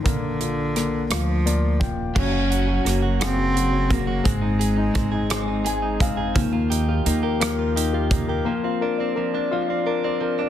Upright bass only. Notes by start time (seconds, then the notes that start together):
0.06 A#1
1.10 D2
1.81 D#1
2.16 F#1
2.85 F#1
4.26 G#1
4.95 G#1
6.36 D#2
7.06 D#2